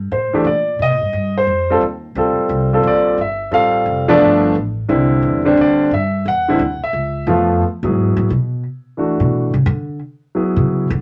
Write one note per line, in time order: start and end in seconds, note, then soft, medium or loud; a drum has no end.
0.00 0.11 G2 medium
0.11 0.32 A2 medium
0.11 0.44 C5 medium
0.33 0.45 E3 medium
0.33 0.45 A3 medium
0.33 0.45 D4 medium
0.33 0.45 G4 medium
0.33 muted upright bass stroke soft
0.44 0.78 A#2 medium
0.44 0.78 D5 medium
0.79 0.90 C3 medium
0.79 1.34 D#5 medium
0.90 1.01 A#2 medium
1.01 1.12 G2 medium
1.13 1.46 G2 medium
1.38 1.80 C5 medium
1.47 1.80 F2 medium
1.70 1.81 G3 medium
1.70 1.81 C4 medium
1.70 1.82 F4 medium
1.70 1.82 A4 medium
1.81 2.15 D#2 medium
2.15 2.36 D2 medium
2.15 2.68 G3 medium
2.15 2.69 C4 medium
2.15 2.69 F4 medium
2.15 2.69 A4 medium
2.37 muted upright bass stroke soft
2.49 2.83 C2 medium
2.73 3.17 G3 medium
2.73 3.17 C4 medium
2.73 3.17 F4 medium
2.73 3.17 A4 medium
2.83 3.17 A#1 medium
2.87 3.18 D5 medium
3.18 3.51 G1 medium
3.18 3.52 E5 medium
3.51 3.85 A1 medium
3.51 4.04 G3 medium
3.51 4.04 C4 soft
3.51 4.04 F4 medium
3.51 4.05 A4 medium
3.51 4.06 F5 medium
3.86 4.19 F1 medium
4.08 4.52 F3 medium
4.08 4.53 A3 medium
4.08 4.53 B3 medium
4.08 4.53 D4 medium
4.08 4.53 D5 medium
4.21 4.54 G1 medium
4.55 4.88 A1 medium
4.89 5.22 C2 medium
4.89 5.41 D3 medium
4.89 5.41 G3 medium
4.89 5.41 C4 medium
4.89 5.41 E4 medium
5.22 5.56 E2 medium
5.45 5.89 D3 medium
5.45 5.89 G3 medium
5.45 5.89 C4 medium
5.45 5.90 D4 medium
5.57 5.91 D2 medium
5.57 5.91 D5 medium
5.91 6.25 G2 medium
5.91 6.25 E5 medium
6.25 6.59 E2 medium
6.25 6.79 F#5 loud
6.48 6.59 D3 medium
6.48 6.59 G3 medium
6.48 6.60 C4 medium
6.48 6.60 E4 medium
6.59 6.80 D2 medium
6.82 7.26 E5 medium
6.82 muted upright bass stroke soft
6.93 7.26 C#2 medium
7.27 7.60 F2 medium
7.27 7.62 F3 medium
7.27 7.62 A3 medium
7.27 7.62 B3 medium
7.27 7.63 F4 medium
7.83 8.15 G#2 medium
7.83 8.28 F#3 soft
7.83 8.28 B3 soft
7.83 8.28 E4 soft
7.83 8.28 G#4 medium
8.17 8.29 A2 medium
8.30 8.62 B2 medium
8.97 9.50 E3 soft
8.97 9.50 A3 soft
8.97 9.50 D4 soft
8.97 9.51 F#4 medium
9.20 9.52 B2 medium
9.54 9.65 C#3 medium
9.66 9.98 D3 medium
10.35 10.87 F#3 soft
10.35 10.87 B3 soft
10.35 10.87 E4 soft
10.35 10.88 G#4 medium
10.56 10.88 C#3 medium
10.90 11.01 D3 medium